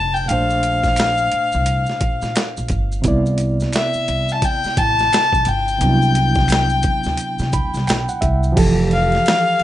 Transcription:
0.00 0.25 F1 medium
0.00 0.24 A#2 medium
0.00 0.25 A3 medium
0.00 0.26 D4 medium
0.00 0.31 C5 medium
0.00 0.16 A5 medium
0.14 0.30 G5 medium
0.14 maracas soft
0.26 3.00 A#2 medium
0.26 3.01 A3 medium
0.26 2.36 F5 medium
0.26 closed hi-hat medium
0.26 maracas soft
0.30 1.29 A#1 loud
0.30 3.02 D4 medium
0.30 3.03 C5 medium
0.50 maracas soft
0.63 closed hi-hat medium
0.63 maracas soft
0.83 kick medium
0.83 snare soft
0.83 maracas soft
0.96 finger snap medium
0.96 snare loud
0.96 closed hi-hat medium
0.96 maracas medium
1.17 maracas soft
1.32 muted upright bass stroke soft
1.32 closed hi-hat medium
1.52 1.84 C2 medium
1.52 maracas soft
1.66 closed hi-hat medium
1.66 maracas medium
1.86 snare soft
1.86 maracas soft
2.01 2.19 A#1 medium
2.01 kick medium
2.01 closed hi-hat medium
2.22 2.34 A#2 medium
2.22 snare soft
2.22 maracas soft
2.36 finger snap medium
2.36 snare loud
2.36 closed hi-hat medium
2.36 maracas medium
2.57 2.69 A#1 medium
2.57 maracas soft
2.68 3.00 G1 medium
2.68 kick medium
2.68 closed hi-hat medium
2.68 maracas soft
2.92 maracas soft
3.02 3.64 C2 loud
3.02 5.75 C3 medium
3.02 5.76 B3 medium
3.02 kick loud
3.02 closed hi-hat medium
3.02 maracas soft
3.06 5.77 E4 medium
3.06 5.78 D5 medium
3.26 maracas soft
3.38 closed hi-hat medium
3.38 maracas soft
3.60 snare soft
3.60 maracas soft
3.73 4.34 E5 medium
3.73 finger snap medium
3.73 snare medium
3.73 closed hi-hat medium
3.73 maracas medium
3.93 muted upright bass stroke soft
3.93 maracas soft
4.08 4.38 C2 medium
4.08 closed hi-hat medium
4.29 4.46 A5 medium
4.29 maracas soft
4.42 4.79 G5 loud
4.42 kick medium
4.42 closed hi-hat medium
4.42 maracas medium
4.64 muted upright bass stroke soft
4.64 snare soft
4.64 maracas soft
4.77 5.07 A1 medium
4.77 5.50 A5 loud
4.77 kick loud
4.77 closed hi-hat medium
4.99 snare soft
4.99 maracas soft
5.13 finger snap medium
5.13 snare loud
5.13 closed hi-hat medium
5.13 maracas medium
5.33 5.45 B1 medium
5.33 kick medium
5.33 maracas soft
5.45 5.76 G1 medium
5.45 7.89 G5 medium
5.45 closed hi-hat medium
5.45 maracas soft
5.68 maracas soft
5.78 6.80 C2 loud
5.78 8.52 C3 medium
5.78 8.53 B3 medium
5.78 closed hi-hat medium
5.78 maracas soft
5.83 8.55 F#3 medium
5.83 5.90 D4 soft
5.89 8.57 E4 medium
6.02 maracas soft
6.15 closed hi-hat medium
6.15 maracas soft
6.35 kick medium
6.35 snare soft
6.35 maracas soft
6.48 finger snap medium
6.48 closed hi-hat medium
6.48 maracas medium
6.52 snare loud
6.69 maracas soft
6.83 muted upright bass stroke soft
6.83 kick medium
6.83 closed hi-hat medium
6.83 maracas soft
7.04 7.17 D2 medium
7.04 snare soft
7.04 maracas soft
7.17 closed hi-hat medium
7.17 maracas medium
7.39 7.51 C3 medium
7.39 snare soft
7.39 maracas soft
7.53 7.71 D2 medium
7.53 7.85 B5 medium
7.53 kick medium
7.53 closed hi-hat medium
7.53 maracas soft
7.74 7.86 C2 medium
7.74 snare soft
7.74 maracas soft
7.87 8.06 B1 medium
7.87 8.07 G5 medium
7.87 finger snap medium
7.87 snare loud
7.87 closed hi-hat medium
7.87 maracas medium
8.09 8.21 F#5 medium
8.09 maracas soft
8.21 8.52 C2 medium
8.21 8.54 E5 medium
8.21 kick medium
8.21 closed hi-hat medium
8.21 maracas soft
8.43 maracas soft
8.52 9.63 E3 medium
8.52 9.63 F3 medium
8.52 9.63 G4 medium
8.57 9.16 F1 loud
8.57 9.63 A4 medium
8.57 kick loud
8.57 crash loud
8.57 ride medium
8.91 9.63 F5 medium
8.91 ride medium
9.12 snare soft
9.12 ride soft
9.26 snare loud
9.26 ride medium
9.60 ride medium

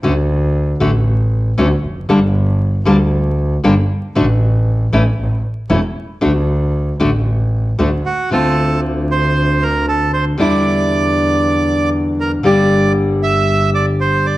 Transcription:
0.03 0.77 D2 loud
0.03 0.12 D3 medium
0.03 0.12 A3 medium
0.03 0.13 C#4 medium
0.03 0.13 F#4 medium
0.80 1.54 A1 loud
0.80 0.89 D3 medium
0.80 0.90 A3 medium
0.80 0.90 C#4 medium
0.80 0.90 F#4 medium
1.58 1.80 D2 medium
1.58 1.67 D3 medium
1.58 1.67 A3 medium
1.58 1.67 C#4 medium
1.58 1.68 F#4 medium
1.84 2.09 F1 medium
2.09 2.83 G1 loud
2.09 2.18 D3 medium
2.09 2.18 G3 medium
2.09 2.19 A#3 medium
2.09 2.19 D4 medium
2.09 2.19 A4 medium
2.85 3.60 D2 medium
2.85 2.95 D3 medium
2.85 2.96 G3 medium
2.85 2.96 A#3 medium
2.85 2.96 D4 medium
2.85 2.96 A4 loud
3.64 3.86 G1 loud
3.64 3.73 D3 medium
3.64 3.73 G3 medium
3.64 3.73 A#3 medium
3.64 3.73 D4 medium
3.64 3.73 A4 medium
4.15 4.89 A1 loud
4.15 4.25 D3 medium
4.15 4.25 A3 medium
4.15 4.25 D4 medium
4.15 4.25 F#4 medium
4.92 5.14 A1 loud
4.92 5.02 E3 medium
4.92 5.02 A3 medium
4.92 5.02 C#4 medium
4.92 5.02 E4 medium
5.18 5.40 A1 medium
5.70 5.92 E1 medium
5.70 5.79 E3 medium
5.70 5.79 A3 medium
5.70 5.79 C#4 medium
5.70 5.79 E4 medium
6.21 6.96 D2 loud
6.21 6.31 D3 medium
6.21 6.31 A3 medium
6.21 6.31 D4 medium
6.21 6.31 F#4 medium
7.00 7.75 A1 medium
7.00 7.09 D3 medium
7.00 7.09 A3 medium
7.00 7.09 D4 medium
7.00 7.10 F#4 medium
7.78 8.01 D2 medium
7.78 7.88 D3 medium
7.78 7.88 A3 medium
7.78 7.88 D4 medium
7.78 7.88 F#4 medium
8.06 8.30 F#4 medium
8.30 10.29 D2 medium
8.30 10.36 D3 medium
8.30 10.38 A3 medium
8.30 10.38 C4 medium
8.30 10.39 F4 medium
8.30 8.80 A4 medium
9.11 9.64 C5 medium
9.62 9.86 A#4 medium
9.88 10.12 A4 medium
10.13 10.25 C5 medium
10.38 12.34 E2 medium
10.38 12.42 D3 medium
10.38 12.43 G3 medium
10.38 12.44 D4 medium
10.38 12.44 E4 medium
10.38 11.90 D5 medium
12.20 12.32 A#4 medium
12.43 14.38 G1 medium
12.43 14.38 D3 medium
12.43 14.38 G3 medium
12.43 14.38 A#3 medium
12.43 14.38 D4 medium
12.43 14.38 G4 medium
12.43 12.93 D5 medium
13.23 13.70 E5 loud
13.75 13.86 D5 medium
14.01 14.26 C5 medium
14.26 14.38 D5 medium

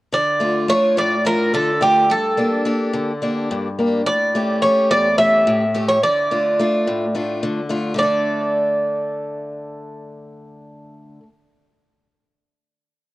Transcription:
0.12 0.67 D3 medium
0.12 0.65 D5 medium
0.40 0.67 A3 soft
0.40 0.68 D4 soft
0.40 0.68 F4 soft
0.68 1.13 A3 soft
0.68 1.14 D4 soft
0.68 1.14 F4 soft
0.68 0.95 C#5 medium
0.97 1.51 A2 medium
0.97 1.26 D5 medium
1.25 1.70 A3 soft
1.25 1.70 D4 soft
1.25 1.70 F4 medium
1.25 1.54 A#4 medium
1.53 2.08 D3 medium
1.53 1.80 A4 medium
1.81 2.03 A3 soft
1.81 2.04 D4 soft
1.81 2.04 F4 soft
1.81 2.11 G4 medium
2.10 2.64 G2 medium
2.10 3.75 A4 medium
2.37 2.64 A#3 soft
2.37 2.65 D4 soft
2.37 2.65 G4 soft
2.65 3.10 A#3 soft
2.65 3.11 D4 soft
2.65 3.11 G4 medium
2.93 3.48 D3 medium
3.22 3.67 A#3 soft
3.22 3.67 D4 soft
3.22 3.67 G4 soft
3.51 4.05 G2 medium
3.79 4.01 A#3 medium
3.79 4.01 D4 soft
3.79 4.01 G4 soft
4.06 4.61 A2 medium
4.06 4.59 D5 medium
4.35 4.62 A3 soft
4.35 4.62 C#4 soft
4.35 4.62 G4 soft
4.62 5.08 A3 soft
4.62 5.08 C#4 soft
4.62 5.08 G4 medium
4.62 4.88 C#5 medium
4.91 5.45 E2 medium
4.91 5.18 D5 medium
5.18 5.63 A3 soft
5.18 5.64 C#4 soft
5.18 5.64 G4 soft
5.18 5.84 E5 medium
5.47 6.01 A2 medium
5.75 5.97 A3 medium
5.75 5.97 C#4 soft
5.75 5.97 G4 soft
5.89 6.03 C#5 medium
6.03 6.57 D3 medium
6.03 7.39 D5 medium
6.31 6.58 A3 soft
6.31 6.59 D4 soft
6.31 6.59 F4 soft
6.59 7.04 A3 medium
6.59 7.04 D4 soft
6.59 7.04 F4 medium
6.87 7.41 A2 medium
7.15 7.59 A3 soft
7.15 7.60 D4 soft
7.15 7.60 F4 soft
7.43 7.93 D3 medium
7.69 7.92 A3 soft
7.69 7.92 D4 soft
7.69 7.93 F4 soft
7.94 11.18 D3 medium
7.94 11.20 A3 soft
7.94 11.22 D4 soft
7.99 8.03 F4 soft
7.99 11.23 D5 medium
8.03 11.27 A4 medium

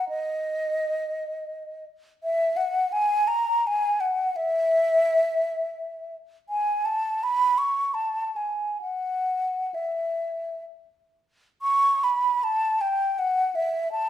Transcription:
0.09 1.86 D#5 medium
2.24 2.58 E5 medium
2.57 2.94 F#5 medium
2.92 3.29 G#5 loud
3.28 3.68 A#5 medium
3.67 4.02 G#5 medium
4.00 4.38 F#5 medium
4.36 6.15 E5 loud
6.49 6.87 G#5 medium
6.85 7.25 A5 medium
7.23 7.59 B5 medium
7.58 7.96 C#6 medium
7.94 8.38 A5 medium
8.36 8.81 G#5 medium
8.82 9.76 F#5 medium
9.74 10.64 E5 medium
11.62 12.05 C#6 loud
12.04 12.45 B5 medium
12.44 12.83 A5 loud
12.81 13.20 G5 medium
13.19 13.57 F#5 medium
13.55 13.91 E5 medium
13.92 14.09 A5 medium

